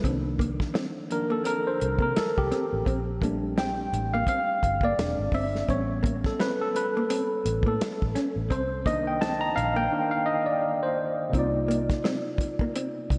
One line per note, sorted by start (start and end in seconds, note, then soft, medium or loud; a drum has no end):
0.04 0.63 C2 medium
0.04 1.10 D#3 medium
0.04 1.10 F3 soft
0.04 1.10 A#3 soft
0.04 0.17 C4 medium
0.04 1.11 D4 medium
0.04 kick medium
0.04 closed hi-hat medium
0.39 0.52 A#3 medium
0.39 kick medium
0.39 closed hi-hat medium
0.60 kick medium
0.60 snare soft
0.74 0.87 C4 medium
0.74 snare medium
0.74 closed hi-hat medium
1.10 1.42 D#3 soft
1.10 1.42 F3 soft
1.10 1.43 A#3 soft
1.10 1.43 D4 medium
1.10 1.32 A#4 medium
1.10 muted hollow-body jazz guitar stroke soft
1.10 closed hi-hat medium
1.30 1.39 A#3 medium
1.30 1.45 A4 medium
1.44 1.57 C4 medium
1.44 1.55 A#4 medium
1.44 closed hi-hat medium
1.67 2.03 C5 medium
1.80 1.98 C2 medium
1.80 muted hollow-body jazz guitar stroke soft
1.80 closed hi-hat medium
1.99 2.12 C3 medium
1.99 2.10 A#3 medium
1.99 2.17 A#4 medium
1.99 kick medium
2.16 2.26 A4 medium
2.16 muted fingered electric bass stroke soft
2.16 snare loud
2.16 closed hi-hat medium
2.38 2.50 C2 medium
2.38 3.04 G4 medium
2.38 kick medium
2.52 2.64 C4 medium
2.52 snare soft
2.52 closed hi-hat medium
2.73 2.84 A1 medium
2.86 3.88 A#1 loud
2.86 2.99 C4 medium
2.86 kick medium
2.86 closed hi-hat medium
3.22 4.94 G3 medium
3.22 4.95 A3 soft
3.22 3.35 A#3 medium
3.22 4.95 C4 soft
3.22 4.95 D4 medium
3.22 kick medium
3.22 closed hi-hat medium
3.58 3.70 C4 medium
3.58 4.15 G5 medium
3.58 snare medium
3.58 closed hi-hat medium
3.93 4.22 A1 medium
3.93 muted hollow-body jazz guitar stroke soft
3.93 closed hi-hat medium
4.14 4.23 A#3 medium
4.14 4.28 F5 loud
4.27 4.41 C4 medium
4.27 4.86 F5 medium
4.27 kick medium
4.27 closed hi-hat medium
4.63 4.92 G1 medium
4.63 muted hollow-body jazz guitar stroke soft
4.63 kick medium
4.63 closed hi-hat medium
4.81 4.92 A#3 medium
4.81 5.30 D5 medium
4.81 kick medium
4.98 5.15 E1 loud
4.98 5.47 G#3 medium
4.98 5.48 C4 soft
4.98 5.48 D4 medium
4.98 snare loud
4.98 closed hi-hat loud
5.19 5.31 G#1 medium
5.32 5.62 G1 medium
5.32 5.47 C4 medium
5.32 5.70 E5 medium
5.32 kick medium
5.32 open hi-hat soft
5.55 snare soft
5.68 6.28 A1 medium
5.68 6.18 G3 medium
5.68 6.18 B3 medium
5.68 5.81 C4 medium
5.68 6.19 C#4 medium
5.68 6.27 C#5 medium
5.68 kick medium
5.68 closed hi-hat medium
6.03 6.16 A#3 medium
6.03 kick medium
6.03 closed hi-hat medium
6.24 6.39 A4 medium
6.24 kick medium
6.24 snare soft
6.39 6.52 C4 medium
6.39 6.50 B4 medium
6.39 snare medium
6.39 closed hi-hat medium
6.61 6.76 A4 medium
6.75 7.63 B4 medium
6.75 muted hollow-body jazz guitar stroke soft
6.75 closed hi-hat medium
6.97 7.05 A#3 medium
7.10 7.23 C4 medium
7.10 closed hi-hat medium
7.45 7.62 A1 medium
7.45 muted hollow-body jazz guitar stroke soft
7.45 closed hi-hat medium
7.63 7.77 A2 medium
7.63 7.75 A#3 medium
7.63 kick medium
7.68 7.83 A4 medium
7.81 muted fingered electric bass stroke soft
7.81 snare loud
7.81 closed hi-hat medium
8.02 8.14 A1 medium
8.02 kick medium
8.15 8.28 C#4 medium
8.15 snare soft
8.15 closed hi-hat medium
8.36 8.51 A1 medium
8.50 9.53 C2 medium
8.50 8.63 C4 medium
8.50 8.84 C5 medium
8.50 kick medium
8.50 closed hi-hat medium
8.86 9.36 D#3 medium
8.86 8.98 A#3 medium
8.86 9.36 A#3 medium
8.86 9.36 D4 medium
8.86 9.08 D#5 medium
8.86 kick medium
8.86 closed hi-hat medium
9.07 9.22 G5 medium
9.21 9.34 C4 medium
9.21 9.43 A5 loud
9.21 snare loud
9.21 closed hi-hat medium
9.41 9.48 A#5 loud
9.55 9.86 A#1 medium
9.55 9.77 F5 loud
9.55 muted hollow-body jazz guitar stroke soft
9.55 closed hi-hat medium
9.76 9.86 A#3 medium
9.76 10.10 G5 loud
9.92 10.24 D#3 medium
9.92 10.24 A#3 soft
9.92 10.24 D4 medium
10.11 10.27 F5 medium
10.26 10.46 D#5 medium
10.46 10.83 D5 medium
10.83 11.29 C5 medium
11.29 13.18 C3 medium
11.29 13.18 A#3 medium
11.33 11.92 C2 medium
11.33 11.47 C4 medium
11.33 13.18 D#4 medium
11.33 13.18 F4 medium
11.33 kick medium
11.33 closed hi-hat medium
11.39 13.18 D5 medium
11.68 11.81 A#3 medium
11.68 closed hi-hat medium
11.90 kick loud
11.90 snare soft
11.90 closed hi-hat soft
12.04 12.17 C4 medium
12.04 snare medium
12.04 closed hi-hat medium
12.38 muted hollow-body jazz guitar stroke soft
12.38 kick medium
12.38 closed hi-hat medium
12.59 12.70 A#3 medium
12.59 kick medium
12.76 12.88 C4 medium
12.76 closed hi-hat medium
13.10 13.18 C2 medium
13.10 muted hollow-body jazz guitar stroke soft
13.10 kick medium
13.10 closed hi-hat medium